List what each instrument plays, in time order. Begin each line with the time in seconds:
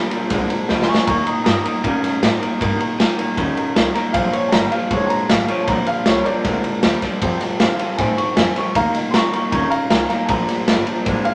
Already playing: upright bass B1, steel-string acoustic guitar F3 A#3 D4, upright piano A#4
0.11 clean electric guitar A#2 F3, steel-string acoustic guitar F3 A#3 D4 A#4, muted upright bass stroke, ride
0.30 upright bass C2, clean electric guitar A#2 G#3, steel-string acoustic guitar A#2 D3 F3 A#3 D4 A#4, kick, snare, ride
0.50 steel-string acoustic guitar F3 A#3 D4 A#4, muted upright bass stroke, ride
0.69 upright bass D2, clean electric guitar A#2 G3, steel-string acoustic guitar F3 A#3 D4 A#4, snare
0.82 upright piano C6, snare
0.87 clean electric guitar A#2 F3, steel-string acoustic guitar F3 A#3 D4 A#4, upright piano G#5 C#6, muted upright bass stroke
0.95 snare
1.06 upright bass D#2, steel-string acoustic guitar D#3 G3 A#3 D#4 A#4, clean electric guitar D#3 A#3, upright piano A#5 C#6, kick, ride
1.25 steel-string acoustic guitar A#3 D#4 A#4, upright piano A#5 D#6, muted upright bass stroke, ride
1.44 upright bass G2, clean electric guitar D#3 C4, steel-string acoustic guitar G3 A#3 D#4 A#4, upright piano A#5 D#6, snare, ride
1.63 clean electric guitar D#3 A#3, steel-string acoustic guitar D#4 A#4, upright piano A#5 D#6, muted upright bass stroke, ride
1.67 steel-string acoustic guitar A#3
1.83 upright bass A#2, steel-string acoustic guitar D#3 G3 A#3 D#4 A#4, clean electric guitar D#3 C#4, kick, ride
2.02 steel-string acoustic guitar A#3 D#4 A#4, muted upright bass stroke, snare, ride
2.21 upright bass A2, clean electric guitar D#3 C4, steel-string acoustic guitar G3 A#3 D#4 A#4, snare, ride
2.39 clean electric guitar D#3 A#3, steel-string acoustic guitar A#3 D#4 A#4, ride
2.59 upright bass G2, steel-string acoustic guitar D#3 G3 A#3 D#4 A#4, clean electric guitar D#3 A#3, kick, ride
2.79 steel-string acoustic guitar A#3 D#4 A#4, ride
2.98 upright bass F2, clean electric guitar D#3 C4, steel-string acoustic guitar G3 A#3 D#4 A#4, snare, ride
3.17 clean electric guitar D#3 A#3, steel-string acoustic guitar A#3 D#4 A#4, muted upright bass stroke, ride
3.37 upright bass D#2, steel-string acoustic guitar D#3 G3 A#3 D#4 A#4, clean electric guitar D#3 C#4, kick, ride
3.56 steel-string acoustic guitar A#3 D#4 A#4, muted upright bass stroke, ride
3.75 upright bass C2, clean electric guitar D#3 C4, steel-string acoustic guitar G3 A#3 D#4 A#4, snare, ride
3.95 clean electric guitar D#3 A#3, steel-string acoustic guitar A#3 D#4 A#4, upright piano A#5, muted upright bass stroke, snare, ride
4.13 upright bass A#1, clean electric guitar A#2 F3, steel-string acoustic guitar A#2 D3 F3 A#3 D4 A#4, upright piano F5, kick, ride
4.32 steel-string acoustic guitar F3 A#3 D4 A#4, upright piano C#5, muted upright bass stroke, ride
4.48 steel-string acoustic guitar F3, upright piano A5, snare, ride
4.53 upright bass G1, clean electric guitar A#2 G3, steel-string acoustic guitar A#3 D4 A#4, upright piano A#5
4.71 clean electric guitar A#2 F3, steel-string acoustic guitar F3 A#3 D4 A#4, upright piano F5, ride
4.90 upright bass F1, steel-string acoustic guitar A#2 D3 F3 A#3 D4 A#4, clean electric guitar A#2 G#3, upright piano C#5, kick, ride
5.06 steel-string acoustic guitar D4 A#4, upright piano A5 A#5, ride
5.11 steel-string acoustic guitar F3 A#3, muted upright bass stroke
5.29 upright bass A1, clean electric guitar A#2 G3, steel-string acoustic guitar F3 A#3 D4 A#4, upright piano F5, snare, ride
5.47 clean electric guitar A#2 F3, steel-string acoustic guitar F3 A#3 D4 A#4, upright piano C#5, ride
5.63 upright piano A5
5.67 upright bass A#1, steel-string acoustic guitar A#2 D3 F3 A#3 D4 A#4, clean electric guitar A#2 F3, upright piano A#5, kick, ride
5.85 steel-string acoustic guitar F3 A#3 D4 A#4, upright piano F5, muted upright bass stroke, ride
6.06 upright bass C2, clean electric guitar A#2 G3, steel-string acoustic guitar F3 A#3 D4 A#4, upright piano C#5, snare, ride
6.24 clean electric guitar A#2 F3, steel-string acoustic guitar A#3 D4 A#4, upright piano A#4 D5, muted upright bass stroke, ride
6.28 steel-string acoustic guitar F3
6.44 upright bass D2, steel-string acoustic guitar A#2 D3 F3 A#3 D4 A#4, clean electric guitar A#2 G#3, kick, snare, ride
6.63 steel-string acoustic guitar F3 A#3 D4 A#4, muted upright bass stroke, ride
6.83 upright bass D#2, clean electric guitar A#2 G3, steel-string acoustic guitar F3 A#3 D4 A#4, snare, ride
7.01 clean electric guitar A#2 F3, steel-string acoustic guitar F3 A#3 D4 A#4, muted upright bass stroke, kick, snare, ride
7.21 clean electric guitar F2 C3, upright bass F2, steel-string acoustic guitar F3 C4 F4 A4, kick, ride
7.41 steel-string acoustic guitar C4 F4 A4, muted upright bass stroke, snare, ride
7.60 clean electric guitar F2 D3, upright bass C3, steel-string acoustic guitar F3 C4 F4 A4, upright piano F5, snare, ride
7.79 clean electric guitar F2 C3, steel-string acoustic guitar C4 F4 A4, muted upright bass stroke, ride
7.97 clean electric guitar F2 D#3, upright bass A2, steel-string acoustic guitar F3 C4 F4 A4, upright piano G#5, kick, snare, ride
8.17 steel-string acoustic guitar C4 F4 A4, upright piano C#6, muted upright bass stroke, ride
8.35 clean electric guitar F2 D3, upright bass F2, steel-string acoustic guitar F3 C4 F4 A4, upright piano G#5, snare, ride
8.55 clean electric guitar F2 C3, steel-string acoustic guitar C4 F4 A4, upright piano C#6, snare, ride
8.74 upright bass D#2, steel-string acoustic guitar D#3 G3 A#3 D#4 A#4, clean electric guitar D#3 A#3, upright piano F5 A#5, kick, ride
8.92 steel-string acoustic guitar A#3 D#4 A#4, muted upright bass stroke, snare, ride
9.11 clean electric guitar D#3 C4, steel-string acoustic guitar G3 A#3, upright piano A#5 C6, snare, ride
9.15 upright bass D2, steel-string acoustic guitar D#4 A#4, upright piano C#6
9.32 clean electric guitar D#3 A#3, steel-string acoustic guitar A#3 D#4 A#4, upright piano A#5 C#6, muted upright bass stroke, ride
9.51 upright bass D#2, steel-string acoustic guitar D#3 G3 A#3 D#4 A#4, clean electric guitar D#3 C#4, upright piano A#5 C#6, kick, ride
9.70 steel-string acoustic guitar A#3 D#4 A#4, upright piano F5 A#5, muted upright bass stroke, ride
9.90 upright bass C2, clean electric guitar D#3 C4, steel-string acoustic guitar G3 A#3 D#4 A#4, upright piano F5 A#5, snare, ride
10.09 clean electric guitar D#3 A#3, steel-string acoustic guitar D#4 A#4, upright piano F5 A#5, muted upright bass stroke, snare, ride
10.14 steel-string acoustic guitar A#3
10.25 steel-string acoustic guitar A#2 D3, clean electric guitar A#2, upright piano A5, kick, ride
10.29 upright bass A#1, clean electric guitar F3, steel-string acoustic guitar F3 A#3 D4 A#4, upright piano A#5
10.48 steel-string acoustic guitar F3 A#3 D4 A#4, muted upright bass stroke, snare, ride
10.67 upright bass G1, clean electric guitar A#2 G3, steel-string acoustic guitar F3 A#3 D4 A#4, snare, ride
10.86 clean electric guitar A#2 F3, steel-string acoustic guitar F3 A#3 D4 A#4, ride
11.05 upright bass A1, steel-string acoustic guitar A#2 D3 F3 A#3 D4 A#4, clean electric guitar A#2 G#3, kick, ride
11.24 steel-string acoustic guitar F3 A#3 D4 A#4, upright piano F5, muted upright bass stroke, ride